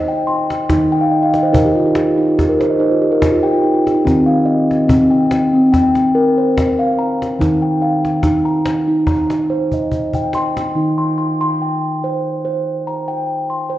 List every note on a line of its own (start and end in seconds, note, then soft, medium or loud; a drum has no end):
0.00 0.67 D#3 medium
0.00 0.28 D#5 medium
0.08 0.50 G5 medium
0.27 0.92 C6 medium
0.27 cajon slap soft
0.50 cajon slap soft
0.69 4.01 D#3 medium
0.69 1.12 D#4 medium
0.69 cajon bass medium
0.69 cajon slap soft
0.92 1.11 G5 medium
1.01 1.21 F5 medium
1.11 1.32 D#5 medium
1.23 1.42 F5 medium
1.34 1.53 D#5 medium
1.34 cajon slap soft
1.43 1.63 C5 medium
1.52 1.85 D#4 medium
1.52 1.74 A#4 medium
1.52 cajon bass medium
1.65 1.85 G4 medium
1.75 1.94 F4 medium
1.86 2.06 D#4 medium
1.95 2.17 G4 medium
1.95 cajon slap medium
2.06 2.26 F4 medium
2.18 2.20 D#4 medium
2.28 2.47 F4 medium
2.38 2.59 G4 medium
2.38 cajon bass medium
2.38 cajon slap soft
2.49 2.69 A#4 medium
2.60 2.78 C5 medium
2.60 cajon slap soft
2.70 2.90 D#5 medium
2.79 3.00 D#4 medium
2.79 3.22 C5 medium
2.91 3.10 F4 medium
3.02 3.20 G4 medium
3.11 3.31 A#4 medium
3.20 3.42 D#4 medium
3.20 cajon bass medium
3.20 cajon slap soft
3.31 3.52 F4 medium
3.43 3.62 G4 medium
3.43 3.85 G5 medium
3.53 3.73 F4 medium
3.63 3.84 D#4 medium
3.63 cajon slap soft
3.74 3.94 F4 medium
3.85 4.04 G4 medium
3.85 cajon slap soft
3.94 4.14 D#4 medium
4.05 7.36 D#3 medium
4.05 4.47 C4 medium
4.05 cajon bass medium
4.05 cajon slap soft
4.26 4.88 F5 medium
4.46 5.11 D#5 medium
4.71 cajon slap soft
4.88 5.31 C4 medium
4.88 cajon bass medium
5.11 5.71 G5 medium
5.31 cajon slap soft
5.53 5.95 C4 medium
5.73 6.37 G5 medium
5.73 cajon bass medium
5.73 cajon slap soft
5.95 cajon slap soft
6.15 6.57 A#4 medium
6.38 6.99 C5 medium
6.57 cajon bass soft
6.57 cajon slap soft
6.79 7.21 F5 medium
6.98 7.63 A#5 medium
7.22 cajon slap soft
7.39 10.71 D#3 medium
7.39 7.82 D#4 medium
7.39 cajon bass medium
7.39 cajon slap soft
7.62 8.24 G5 medium
7.82 8.46 F5 medium
8.05 cajon slap soft
8.23 8.66 D#4 medium
8.23 cajon bass medium
8.23 cajon slap soft
8.45 9.06 A#5 medium
8.65 cajon slap medium
8.88 9.30 D#4 medium
9.07 9.72 A#5 medium
9.07 cajon bass medium
9.07 cajon slap soft
9.30 cajon slap soft
9.49 9.92 C5 medium
9.49 cajon slap soft
9.71 10.34 D#5 medium
9.71 cajon bass soft
9.92 cajon bass soft
10.13 10.57 G5 medium
10.13 cajon bass soft
10.33 10.97 C6 medium
10.33 cajon slap soft
10.57 cajon slap soft
10.75 13.78 D#3 medium
10.75 11.18 D#4 medium
10.98 11.17 C6 medium
11.18 11.40 C6 soft
11.41 11.83 C6 medium
11.62 12.25 G5 soft
12.04 12.43 C5 medium
12.45 12.86 C5 medium
12.87 13.51 A#5 medium
13.08 13.50 G5 medium
13.50 13.78 C6 soft
13.70 13.78 C5 medium